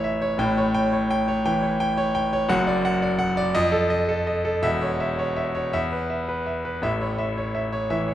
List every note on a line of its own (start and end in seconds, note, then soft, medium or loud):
0.00 0.38 A1 medium
0.00 0.39 A2 medium
0.00 0.43 E3 medium
0.00 0.22 C#5 medium
0.00 0.04 E5 medium
0.00 0.33 E5 medium
0.22 0.40 C#5 medium
0.38 1.41 A1 medium
0.38 1.41 A2 medium
0.38 0.68 G5 medium
0.57 0.85 C#5 medium
0.74 1.03 G5 medium
0.92 1.20 C#5 medium
1.11 1.38 G5 medium
1.28 1.56 C#5 medium
1.45 1.66 E3 medium
1.45 1.73 G5 medium
1.63 1.90 C#5 medium
1.80 2.08 G5 medium
1.97 2.25 C#5 medium
2.15 2.42 G5 medium
2.33 2.50 C#5 medium
2.49 3.51 F#1 medium
2.49 3.51 F#2 loud
2.49 2.77 F#5 loud
2.67 2.95 D5 medium
2.85 3.13 F#5 loud
3.02 3.30 D5 medium
3.19 3.47 F#5 loud
3.37 3.55 D5 loud
3.55 4.60 F2 loud
3.55 3.83 D#5 loud
3.72 4.01 A4 medium
3.90 4.19 D#5 medium
4.09 4.38 A4 medium
4.27 4.56 D#5 medium
4.45 4.63 A4 medium
4.62 5.69 E1 medium
4.62 5.70 E2 medium
4.62 4.92 E5 loud
4.81 5.11 C#5 medium
5.00 5.29 E5 medium
5.19 5.48 C#5 medium
5.36 5.66 E5 medium
5.55 5.73 C#5 medium
5.73 6.80 E2 medium
5.73 6.02 E5 medium
5.92 6.21 B4 medium
6.10 6.39 E5 medium
6.28 6.58 B4 medium
6.46 6.76 E5 medium
6.65 6.83 B4 medium
6.82 7.87 A1 medium
6.82 7.88 A2 medium
6.82 7.12 E5 medium
7.01 7.30 C#5 medium
7.18 7.48 E5 medium
7.37 7.66 C#5 medium
7.55 7.84 E5 medium
7.72 8.02 C#5 medium
7.90 8.12 E3 medium
7.90 8.14 E5 medium
8.08 8.14 C#5 medium